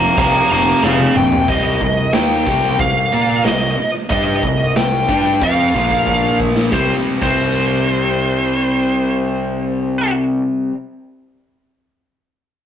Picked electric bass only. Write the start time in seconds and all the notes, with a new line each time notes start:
0.18 C2
0.51 F1
0.83 F1
1.18 A#1
1.48 C2
1.81 C2
2.15 D#2
2.47 C2
2.79 C2
3.13 A#2
3.46 C2
3.79 muted picked electric bass stroke
4.11 G2
4.43 C2
4.78 C2
5.09 G2
5.42 F2
5.75 A#1
6.73 C2
7.22 C2